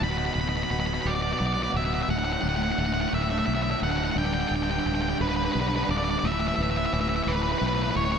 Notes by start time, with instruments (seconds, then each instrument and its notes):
0.01 fingered electric bass D1, distorted electric guitar B2 F#3, lead electric guitar B5
0.09 distorted electric guitar B2 F#3, lead electric guitar B5
0.17 distorted electric guitar B2 F#3, lead electric guitar B5
0.24 distorted electric guitar B2 F#3, lead electric guitar B5
0.31 distorted electric guitar B2 F#3, lead electric guitar B5
0.35 fingered electric bass D1
0.40 distorted electric guitar B2 F#3, lead electric guitar B5
0.47 distorted electric guitar B2 F#3, lead electric guitar B5
0.55 distorted electric guitar B2 F#3, lead electric guitar B5
0.63 distorted electric guitar B2 F#3, lead electric guitar B5
0.70 fingered electric bass D1, distorted electric guitar B2 F#3, lead electric guitar B5
0.78 distorted electric guitar B2 F#3, lead electric guitar B5
0.86 distorted electric guitar B2 F#3, lead electric guitar B5
0.93 distorted electric guitar B2 F#3, lead electric guitar B5
1.01 distorted electric guitar B2 F#3, lead electric guitar B5
1.05 fingered electric bass D1, distorted electric guitar F#3, lead electric guitar D5
1.10 distorted electric guitar B2
1.15 distorted electric guitar B2 F#3, lead electric guitar D5
1.22 distorted electric guitar B2 F#3, lead electric guitar D5
1.32 distorted electric guitar B2 F#3, lead electric guitar D5
1.39 fingered electric bass B1, distorted electric guitar B2 F#3, lead electric guitar D5
1.47 distorted electric guitar B2 F#3, lead electric guitar D5
1.54 distorted electric guitar B2 F#3, lead electric guitar D5
1.62 distorted electric guitar B2 F#3, lead electric guitar D5
1.70 fingered electric bass D1, distorted electric guitar B2 F#3
1.77 distorted electric guitar B2 F#3, lead electric guitar E5
1.85 distorted electric guitar B2 F#3, lead electric guitar E5
1.94 distorted electric guitar B2 F#3, lead electric guitar E5
2.01 distorted electric guitar B2 F#3, lead electric guitar E5
2.08 fingered electric bass D1, distorted electric guitar D2 A2, lead electric guitar F#5
2.16 distorted electric guitar D2 A2, lead electric guitar F#5
2.24 distorted electric guitar D2 A2, lead electric guitar F#5
2.32 distorted electric guitar D2 A2, lead electric guitar F#5
2.40 fingered electric bass D1, distorted electric guitar D2 A2, lead electric guitar F#5
2.47 distorted electric guitar D2 A2, lead electric guitar F#5
2.56 distorted electric guitar D2 A2, lead electric guitar F#5
2.62 distorted electric guitar D2 A2, lead electric guitar F#5
2.70 distorted electric guitar D2 A2, lead electric guitar F#5
2.78 fingered electric bass D1, distorted electric guitar D2 A2, lead electric guitar F#5
2.86 distorted electric guitar D2 A2, lead electric guitar F#5
2.93 distorted electric guitar D2 A2, lead electric guitar F#5
3.01 distorted electric guitar D2 A2, lead electric guitar F#5
3.08 distorted electric guitar D2 A2, lead electric guitar F#5
3.13 fingered electric bass D1, lead electric guitar E5
3.17 distorted electric guitar D2 A2
3.22 distorted electric guitar D2 A2, lead electric guitar E5
3.30 distorted electric guitar D2 A2, lead electric guitar E5
3.39 distorted electric guitar D2 A2, lead electric guitar E5
3.46 fingered electric bass B1, distorted electric guitar D2 A2, lead electric guitar E5
3.55 distorted electric guitar D2 A2, lead electric guitar E5
3.62 distorted electric guitar D2 A2, lead electric guitar E5
3.70 distorted electric guitar D2 A2, lead electric guitar E5
3.77 distorted electric guitar D2 A2
3.82 fingered electric bass D1, lead electric guitar F#5
3.86 distorted electric guitar D2 A2
3.91 distorted electric guitar D2 A2, lead electric guitar F#5
3.97 lead electric guitar F#5
4.01 distorted electric guitar D2 A2, lead electric guitar F#5
4.09 distorted electric guitar D2 A2, lead electric guitar F#5
4.15 fingered electric bass D1, distorted electric guitar G2 D3, lead electric guitar G5
4.22 distorted electric guitar G2 D3, lead electric guitar G5
4.31 distorted electric guitar G2 D3, lead electric guitar G5
4.38 distorted electric guitar G2 D3, lead electric guitar G5
4.47 distorted electric guitar G2 D3, lead electric guitar G5
4.51 fingered electric bass D1, distorted electric guitar G2 D3
4.56 lead electric guitar G5
4.60 distorted electric guitar G2 D3, lead electric guitar G5
4.69 distorted electric guitar G2 D3, lead electric guitar G5
4.77 distorted electric guitar G2 D3, lead electric guitar G5
4.84 fingered electric bass D1, distorted electric guitar G2 D3, lead electric guitar G5
4.92 distorted electric guitar G2 D3, lead electric guitar G5
4.99 distorted electric guitar G2 D3, lead electric guitar G5
5.08 distorted electric guitar G2 D3, lead electric guitar G5
5.15 distorted electric guitar G2 D3
5.20 fingered electric bass D1, distorted electric guitar G2 D3, lead electric guitar B4
5.29 distorted electric guitar G2 D3, lead electric guitar B4
5.36 distorted electric guitar G2 D3, lead electric guitar B4
5.45 distorted electric guitar G2 D3, lead electric guitar B4
5.52 fingered electric bass B1, distorted electric guitar G2 D3, lead electric guitar B4
5.61 distorted electric guitar G2 D3, lead electric guitar B4
5.68 distorted electric guitar G2 D3, lead electric guitar B4
5.76 distorted electric guitar G2 D3, lead electric guitar B4
5.84 distorted electric guitar G2 D3, lead electric guitar B4
5.88 fingered electric bass D1, distorted electric guitar G2, lead electric guitar D5
5.93 distorted electric guitar D3
5.98 distorted electric guitar G2 D3, lead electric guitar D5
6.04 distorted electric guitar G2 D3, lead electric guitar D5
6.11 lead electric guitar D5
6.16 distorted electric guitar G2 D3, lead electric guitar D5
6.23 fingered electric bass D1, distorted electric guitar A2 E3, lead electric guitar E5
6.32 distorted electric guitar A2 E3, lead electric guitar E5
6.38 distorted electric guitar A2 E3, lead electric guitar E5
6.47 distorted electric guitar A2 E3, lead electric guitar E5
6.54 distorted electric guitar A2 E3, lead electric guitar E5
6.58 fingered electric bass D1
6.62 distorted electric guitar A2 E3, lead electric guitar E5
6.70 distorted electric guitar A2 E3, lead electric guitar E5
6.77 distorted electric guitar A2 E3, lead electric guitar E5
6.85 distorted electric guitar A2 E3, lead electric guitar E5
6.92 fingered electric bass D1, distorted electric guitar A2 E3, lead electric guitar E5
7.00 distorted electric guitar A2 E3, lead electric guitar E5
7.08 distorted electric guitar A2 E3, lead electric guitar E5
7.16 distorted electric guitar A2 E3, lead electric guitar E5
7.22 distorted electric guitar A2 E3, lead electric guitar E5
7.26 fingered electric bass D1, lead electric guitar B4
7.31 distorted electric guitar A2 E3
7.36 distorted electric guitar A2 E3, lead electric guitar B4
7.43 distorted electric guitar A2 E3, lead electric guitar B4
7.52 distorted electric guitar A2 E3, lead electric guitar B4
7.58 fingered electric bass B1, distorted electric guitar E3, lead electric guitar B4
7.62 distorted electric guitar A2
7.67 distorted electric guitar A2 E3, lead electric guitar B4
7.75 distorted electric guitar A2 E3, lead electric guitar B4
7.83 distorted electric guitar A2 E3, lead electric guitar B4
7.91 distorted electric guitar A2 E3, lead electric guitar B4
7.96 fingered electric bass D1, distorted electric guitar E3, lead electric guitar C#5
8.00 distorted electric guitar A2
8.05 distorted electric guitar A2 E3, lead electric guitar C#5
8.12 distorted electric guitar E3, lead electric guitar C#5